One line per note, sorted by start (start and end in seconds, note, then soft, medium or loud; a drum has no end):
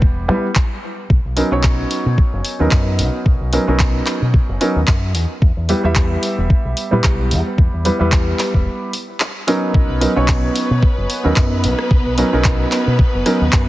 0.00 0.29 E1 medium
0.00 0.26 G3 medium
0.00 0.26 B3 medium
0.00 0.26 E4 medium
0.00 0.26 G4 medium
0.00 0.26 B4 loud
0.00 kick loud
0.28 0.38 B1 medium
0.28 0.45 G3 medium
0.28 0.46 B3 medium
0.28 0.46 E4 medium
0.28 0.46 G4 medium
0.28 0.46 B4 medium
0.55 kick loud
0.55 clap loud
1.10 1.19 B1 medium
1.10 kick loud
1.25 1.40 B1 medium
1.36 1.48 F#3 medium
1.36 1.48 B3 medium
1.36 1.48 C#4 medium
1.36 1.48 D#4 medium
1.36 1.48 A#4 medium
1.36 open hi-hat loud
1.51 1.83 B1 medium
1.51 2.56 F#3 medium
1.51 2.56 B3 medium
1.51 2.56 C#4 medium
1.51 2.57 D#4 medium
1.51 2.57 C#5 medium
1.63 kick loud
1.63 clap loud
1.91 open hi-hat loud
2.06 2.17 B2 medium
2.18 muted fingered electric bass stroke soft
2.18 kick loud
2.33 2.40 F#1 medium
2.45 open hi-hat loud
2.59 2.67 D#2 medium
2.59 3.50 F#3 medium
2.59 3.50 B3 medium
2.59 3.50 C#4 medium
2.59 3.51 D#4 medium
2.59 3.51 A#4 medium
2.71 3.00 F#2 medium
2.71 kick loud
2.71 clap loud
2.99 3.08 B1 medium
2.99 open hi-hat loud
3.26 3.35 B1 medium
3.26 kick loud
3.41 3.56 B1 medium
3.53 3.64 F#3 medium
3.53 3.64 B3 medium
3.53 3.64 C#4 medium
3.53 3.64 D#4 medium
3.53 3.64 A#4 medium
3.53 open hi-hat medium
3.67 3.99 B1 medium
3.67 4.58 F#3 medium
3.67 4.58 B3 medium
3.67 4.58 C#4 medium
3.67 4.59 D#4 medium
3.67 4.59 A#4 medium
3.79 kick loud
3.79 clap loud
4.06 clap medium
4.06 open hi-hat loud
4.22 4.37 B2 medium
4.34 kick loud
4.49 4.56 F#1 medium
4.61 4.78 F#3 medium
4.61 4.78 B3 medium
4.61 4.78 C#4 medium
4.61 4.78 D#4 medium
4.61 4.78 A#4 medium
4.61 open hi-hat medium
4.76 4.83 D#2 medium
4.87 5.15 F#2 medium
4.87 kick loud
4.87 clap loud
5.15 5.24 E2 medium
5.15 open hi-hat medium
5.42 5.51 E2 medium
5.42 kick loud
5.57 5.72 E2 medium
5.69 5.80 G3 medium
5.69 5.80 B3 medium
5.69 5.80 E4 medium
5.69 5.80 G4 medium
5.69 5.81 B4 medium
5.69 open hi-hat medium
5.83 6.16 E2 medium
5.83 6.88 G3 medium
5.83 6.88 B3 medium
5.83 6.89 E4 medium
5.83 6.89 G4 medium
5.83 6.89 E5 loud
5.95 kick loud
5.95 clap loud
6.23 open hi-hat loud
6.38 6.49 E1 medium
6.50 muted fingered electric bass stroke soft
6.50 kick loud
6.65 6.72 B1 medium
6.77 open hi-hat loud
6.91 7.00 A#2 medium
6.91 7.82 G3 medium
6.91 7.82 B3 medium
6.91 7.82 E4 medium
6.91 7.83 G4 medium
6.91 7.83 B4 medium
7.04 7.33 B1 medium
7.04 kick loud
7.04 clap loud
7.31 7.40 E2 medium
7.31 open hi-hat medium
7.58 7.67 E2 medium
7.58 kick loud
7.74 7.89 E2 medium
7.85 7.96 G3 medium
7.85 7.96 B3 medium
7.85 7.96 E4 medium
7.85 7.96 G4 medium
7.85 7.97 B4 medium
7.85 open hi-hat medium
7.99 8.32 E2 medium
7.99 8.90 G3 medium
7.99 8.90 B3 medium
7.99 8.90 E4 medium
7.99 8.91 G4 medium
7.99 8.91 B4 loud
8.12 kick loud
8.12 clap loud
8.39 clap medium
8.39 open hi-hat loud
8.54 8.66 E1 medium
8.54 kick medium
8.93 open hi-hat medium
9.20 clap loud
9.47 9.99 F#3 medium
9.47 9.99 B3 medium
9.47 9.99 C#4 medium
9.47 9.99 D#4 medium
9.47 9.99 A#4 loud
9.47 open hi-hat medium
9.74 9.84 B1 medium
9.74 13.69 B3 medium
9.74 13.69 B4 medium
9.74 kick loud
9.89 10.05 B1 medium
10.00 10.12 F#3 medium
10.00 10.12 B3 medium
10.00 10.12 C#4 medium
10.00 10.12 D#4 medium
10.00 10.12 A#4 medium
10.00 open hi-hat loud
10.15 10.48 B1 medium
10.15 11.21 F#3 medium
10.15 11.21 B3 medium
10.15 11.21 C#4 medium
10.15 11.21 D#4 medium
10.15 11.22 C#5 loud
10.28 kick loud
10.28 clap loud
10.56 open hi-hat loud
10.71 10.82 B2 medium
10.83 muted fingered electric bass stroke soft
10.83 kick loud
10.98 11.05 F#1 medium
11.10 open hi-hat loud
11.24 11.32 D#2 medium
11.24 12.15 F#3 medium
11.24 12.15 B3 medium
11.24 12.15 C#4 medium
11.24 12.15 D#4 medium
11.24 12.15 A#4 medium
11.36 11.66 F#2 medium
11.36 kick loud
11.36 clap loud
11.64 11.73 B1 medium
11.64 open hi-hat loud
11.79 cross-stick medium
11.91 12.00 B1 medium
11.91 kick loud
12.06 12.21 B1 medium
12.18 12.29 F#3 medium
12.18 12.29 B3 medium
12.18 12.29 C#4 medium
12.18 12.29 D#4 medium
12.18 12.29 A#4 medium
12.18 open hi-hat loud
12.32 12.64 B1 medium
12.32 13.23 F#3 medium
12.32 13.23 B3 medium
12.32 13.23 C#4 medium
12.32 13.23 D#4 medium
12.32 13.24 A#4 loud
12.44 kick loud
12.44 clap loud
12.72 clap medium
12.72 open hi-hat loud
12.87 13.02 B2 medium
12.99 kick loud
13.14 13.21 F#1 medium
13.25 13.43 F#3 medium
13.25 13.43 B3 medium
13.25 13.43 C#4 medium
13.25 13.43 D#4 medium
13.25 13.43 A#4 loud
13.25 cross-stick medium
13.25 open hi-hat loud
13.41 13.48 D#2 medium
13.52 13.69 F#2 medium
13.52 kick loud
13.52 clap loud